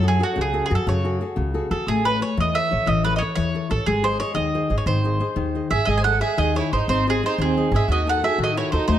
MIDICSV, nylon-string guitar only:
0, 0, Header, 1, 2, 480
1, 0, Start_track
1, 0, Tempo, 333519
1, 1256, Time_signature, 6, 3, 24, 8
1, 12936, End_track
2, 0, Start_track
2, 0, Title_t, "Nylon-string guitar"
2, 0, Program_c, 0, 24
2, 0, Note_on_c, 0, 54, 66
2, 41, Note_on_c, 0, 66, 49
2, 48, Note_on_c, 0, 68, 44
2, 50, Note_on_c, 0, 69, 56
2, 261, Note_off_c, 0, 66, 0
2, 272, Note_off_c, 0, 68, 0
2, 276, Note_off_c, 0, 69, 0
2, 278, Note_on_c, 0, 66, 47
2, 285, Note_off_c, 0, 54, 0
2, 288, Note_on_c, 0, 68, 48
2, 299, Note_on_c, 0, 69, 59
2, 514, Note_on_c, 0, 49, 72
2, 676, Note_off_c, 0, 66, 0
2, 682, Note_off_c, 0, 68, 0
2, 685, Note_off_c, 0, 69, 0
2, 766, Note_on_c, 0, 66, 45
2, 772, Note_on_c, 0, 68, 45
2, 778, Note_on_c, 0, 69, 53
2, 990, Note_off_c, 0, 66, 0
2, 995, Note_off_c, 0, 49, 0
2, 997, Note_off_c, 0, 69, 0
2, 1002, Note_off_c, 0, 68, 0
2, 1007, Note_on_c, 0, 66, 49
2, 1013, Note_on_c, 0, 69, 46
2, 1024, Note_on_c, 0, 68, 46
2, 1250, Note_on_c, 0, 49, 73
2, 1401, Note_off_c, 0, 66, 0
2, 1406, Note_off_c, 0, 69, 0
2, 1409, Note_off_c, 0, 68, 0
2, 1505, Note_on_c, 0, 66, 47
2, 1510, Note_on_c, 0, 69, 46
2, 1515, Note_on_c, 0, 68, 45
2, 1720, Note_off_c, 0, 66, 0
2, 1723, Note_off_c, 0, 49, 0
2, 1726, Note_off_c, 0, 68, 0
2, 1737, Note_on_c, 0, 66, 47
2, 1740, Note_off_c, 0, 69, 0
2, 1743, Note_on_c, 0, 68, 43
2, 1757, Note_on_c, 0, 69, 50
2, 1957, Note_on_c, 0, 49, 55
2, 2128, Note_off_c, 0, 66, 0
2, 2132, Note_off_c, 0, 68, 0
2, 2140, Note_off_c, 0, 69, 0
2, 2215, Note_on_c, 0, 66, 38
2, 2223, Note_on_c, 0, 69, 52
2, 2228, Note_on_c, 0, 68, 38
2, 2438, Note_off_c, 0, 49, 0
2, 2446, Note_off_c, 0, 68, 0
2, 2449, Note_off_c, 0, 66, 0
2, 2452, Note_off_c, 0, 69, 0
2, 2464, Note_on_c, 0, 68, 44
2, 2465, Note_on_c, 0, 66, 46
2, 2472, Note_on_c, 0, 69, 47
2, 2651, Note_off_c, 0, 68, 0
2, 2652, Note_off_c, 0, 66, 0
2, 2654, Note_off_c, 0, 69, 0
2, 2711, Note_on_c, 0, 57, 65
2, 2945, Note_on_c, 0, 69, 50
2, 2952, Note_on_c, 0, 71, 41
2, 2964, Note_on_c, 0, 73, 48
2, 3161, Note_off_c, 0, 69, 0
2, 3170, Note_off_c, 0, 71, 0
2, 3178, Note_off_c, 0, 57, 0
2, 3178, Note_on_c, 0, 69, 42
2, 3179, Note_off_c, 0, 73, 0
2, 3188, Note_on_c, 0, 71, 39
2, 3196, Note_on_c, 0, 73, 51
2, 3417, Note_on_c, 0, 52, 69
2, 3571, Note_off_c, 0, 69, 0
2, 3576, Note_off_c, 0, 71, 0
2, 3581, Note_off_c, 0, 73, 0
2, 3661, Note_on_c, 0, 69, 49
2, 3674, Note_on_c, 0, 71, 44
2, 3681, Note_on_c, 0, 73, 50
2, 3883, Note_off_c, 0, 69, 0
2, 3887, Note_off_c, 0, 71, 0
2, 3890, Note_off_c, 0, 52, 0
2, 3891, Note_off_c, 0, 73, 0
2, 3899, Note_on_c, 0, 69, 46
2, 3908, Note_on_c, 0, 73, 50
2, 3909, Note_on_c, 0, 71, 41
2, 4118, Note_on_c, 0, 52, 71
2, 4291, Note_off_c, 0, 69, 0
2, 4294, Note_off_c, 0, 71, 0
2, 4296, Note_off_c, 0, 73, 0
2, 4382, Note_on_c, 0, 69, 41
2, 4397, Note_on_c, 0, 71, 43
2, 4404, Note_on_c, 0, 73, 54
2, 4600, Note_off_c, 0, 52, 0
2, 4600, Note_off_c, 0, 69, 0
2, 4617, Note_on_c, 0, 69, 48
2, 4619, Note_off_c, 0, 71, 0
2, 4619, Note_off_c, 0, 73, 0
2, 4634, Note_on_c, 0, 71, 45
2, 4640, Note_on_c, 0, 73, 53
2, 4836, Note_on_c, 0, 52, 57
2, 5008, Note_off_c, 0, 69, 0
2, 5020, Note_off_c, 0, 71, 0
2, 5020, Note_off_c, 0, 73, 0
2, 5102, Note_on_c, 0, 69, 45
2, 5114, Note_on_c, 0, 71, 40
2, 5117, Note_on_c, 0, 73, 48
2, 5305, Note_off_c, 0, 69, 0
2, 5309, Note_off_c, 0, 71, 0
2, 5316, Note_off_c, 0, 52, 0
2, 5321, Note_on_c, 0, 69, 51
2, 5324, Note_off_c, 0, 73, 0
2, 5329, Note_on_c, 0, 71, 38
2, 5341, Note_on_c, 0, 73, 53
2, 5517, Note_off_c, 0, 69, 0
2, 5519, Note_off_c, 0, 71, 0
2, 5528, Note_off_c, 0, 73, 0
2, 5570, Note_on_c, 0, 56, 66
2, 5802, Note_on_c, 0, 68, 52
2, 5807, Note_on_c, 0, 72, 45
2, 5816, Note_on_c, 0, 75, 56
2, 6030, Note_off_c, 0, 68, 0
2, 6036, Note_off_c, 0, 72, 0
2, 6041, Note_off_c, 0, 56, 0
2, 6041, Note_off_c, 0, 75, 0
2, 6047, Note_on_c, 0, 68, 55
2, 6053, Note_on_c, 0, 72, 47
2, 6061, Note_on_c, 0, 75, 50
2, 6248, Note_on_c, 0, 51, 62
2, 6439, Note_off_c, 0, 68, 0
2, 6442, Note_off_c, 0, 72, 0
2, 6445, Note_off_c, 0, 75, 0
2, 6546, Note_on_c, 0, 68, 41
2, 6547, Note_on_c, 0, 72, 44
2, 6550, Note_on_c, 0, 75, 59
2, 6739, Note_off_c, 0, 51, 0
2, 6743, Note_off_c, 0, 68, 0
2, 6753, Note_off_c, 0, 75, 0
2, 6755, Note_off_c, 0, 72, 0
2, 6760, Note_on_c, 0, 68, 43
2, 6772, Note_on_c, 0, 72, 38
2, 6773, Note_on_c, 0, 75, 54
2, 7020, Note_on_c, 0, 51, 64
2, 7155, Note_off_c, 0, 68, 0
2, 7162, Note_off_c, 0, 75, 0
2, 7163, Note_off_c, 0, 72, 0
2, 7256, Note_on_c, 0, 68, 46
2, 7271, Note_on_c, 0, 75, 51
2, 7272, Note_on_c, 0, 72, 41
2, 7470, Note_off_c, 0, 68, 0
2, 7473, Note_off_c, 0, 72, 0
2, 7475, Note_off_c, 0, 75, 0
2, 7486, Note_on_c, 0, 68, 50
2, 7488, Note_off_c, 0, 51, 0
2, 7492, Note_on_c, 0, 72, 47
2, 7493, Note_on_c, 0, 75, 59
2, 7712, Note_on_c, 0, 51, 68
2, 7883, Note_off_c, 0, 68, 0
2, 7885, Note_off_c, 0, 72, 0
2, 7887, Note_off_c, 0, 75, 0
2, 7987, Note_on_c, 0, 68, 41
2, 7991, Note_on_c, 0, 72, 42
2, 8001, Note_on_c, 0, 75, 46
2, 8190, Note_off_c, 0, 68, 0
2, 8193, Note_off_c, 0, 72, 0
2, 8198, Note_off_c, 0, 51, 0
2, 8198, Note_off_c, 0, 75, 0
2, 8208, Note_on_c, 0, 68, 47
2, 8211, Note_on_c, 0, 72, 35
2, 8216, Note_on_c, 0, 75, 49
2, 8459, Note_on_c, 0, 56, 63
2, 8607, Note_off_c, 0, 68, 0
2, 8609, Note_off_c, 0, 72, 0
2, 8612, Note_off_c, 0, 75, 0
2, 8700, Note_on_c, 0, 68, 50
2, 8706, Note_on_c, 0, 72, 43
2, 8714, Note_on_c, 0, 75, 51
2, 8913, Note_off_c, 0, 68, 0
2, 8917, Note_off_c, 0, 72, 0
2, 8929, Note_on_c, 0, 68, 48
2, 8932, Note_off_c, 0, 75, 0
2, 8935, Note_off_c, 0, 56, 0
2, 8937, Note_on_c, 0, 72, 41
2, 8949, Note_on_c, 0, 75, 51
2, 9175, Note_on_c, 0, 51, 72
2, 9330, Note_off_c, 0, 68, 0
2, 9332, Note_off_c, 0, 72, 0
2, 9341, Note_off_c, 0, 75, 0
2, 9421, Note_on_c, 0, 68, 46
2, 9428, Note_on_c, 0, 72, 46
2, 9431, Note_on_c, 0, 75, 53
2, 9653, Note_off_c, 0, 68, 0
2, 9654, Note_off_c, 0, 51, 0
2, 9662, Note_off_c, 0, 72, 0
2, 9665, Note_off_c, 0, 75, 0
2, 9671, Note_on_c, 0, 68, 41
2, 9678, Note_on_c, 0, 72, 40
2, 9686, Note_on_c, 0, 75, 51
2, 9919, Note_on_c, 0, 60, 67
2, 10061, Note_off_c, 0, 68, 0
2, 10066, Note_off_c, 0, 72, 0
2, 10068, Note_off_c, 0, 75, 0
2, 10177, Note_on_c, 0, 68, 49
2, 10180, Note_on_c, 0, 72, 44
2, 10182, Note_on_c, 0, 75, 55
2, 10385, Note_off_c, 0, 60, 0
2, 10393, Note_off_c, 0, 68, 0
2, 10396, Note_off_c, 0, 72, 0
2, 10396, Note_off_c, 0, 75, 0
2, 10409, Note_on_c, 0, 68, 45
2, 10415, Note_on_c, 0, 72, 43
2, 10417, Note_on_c, 0, 75, 50
2, 10643, Note_on_c, 0, 51, 60
2, 10793, Note_off_c, 0, 68, 0
2, 10795, Note_off_c, 0, 72, 0
2, 10795, Note_off_c, 0, 75, 0
2, 10896, Note_on_c, 0, 68, 44
2, 10902, Note_on_c, 0, 72, 41
2, 10903, Note_on_c, 0, 75, 50
2, 11107, Note_off_c, 0, 51, 0
2, 11124, Note_off_c, 0, 68, 0
2, 11127, Note_off_c, 0, 72, 0
2, 11132, Note_off_c, 0, 75, 0
2, 11138, Note_on_c, 0, 68, 47
2, 11148, Note_on_c, 0, 72, 45
2, 11149, Note_on_c, 0, 75, 54
2, 11316, Note_off_c, 0, 68, 0
2, 11318, Note_off_c, 0, 72, 0
2, 11321, Note_off_c, 0, 75, 0
2, 11362, Note_on_c, 0, 51, 60
2, 11601, Note_on_c, 0, 63, 51
2, 11615, Note_on_c, 0, 66, 42
2, 11622, Note_on_c, 0, 69, 57
2, 11823, Note_off_c, 0, 63, 0
2, 11825, Note_off_c, 0, 51, 0
2, 11833, Note_off_c, 0, 69, 0
2, 11838, Note_off_c, 0, 66, 0
2, 11840, Note_on_c, 0, 63, 53
2, 11853, Note_on_c, 0, 69, 55
2, 11854, Note_on_c, 0, 66, 42
2, 12070, Note_on_c, 0, 51, 71
2, 12227, Note_off_c, 0, 63, 0
2, 12233, Note_off_c, 0, 69, 0
2, 12236, Note_off_c, 0, 66, 0
2, 12337, Note_on_c, 0, 63, 44
2, 12347, Note_on_c, 0, 66, 44
2, 12359, Note_on_c, 0, 69, 47
2, 12535, Note_off_c, 0, 63, 0
2, 12542, Note_off_c, 0, 51, 0
2, 12553, Note_on_c, 0, 63, 49
2, 12556, Note_off_c, 0, 69, 0
2, 12557, Note_off_c, 0, 66, 0
2, 12572, Note_on_c, 0, 66, 40
2, 12576, Note_on_c, 0, 69, 53
2, 12779, Note_on_c, 0, 57, 65
2, 12936, Note_off_c, 0, 57, 0
2, 12936, Note_off_c, 0, 63, 0
2, 12936, Note_off_c, 0, 66, 0
2, 12936, Note_off_c, 0, 69, 0
2, 12936, End_track
0, 0, End_of_file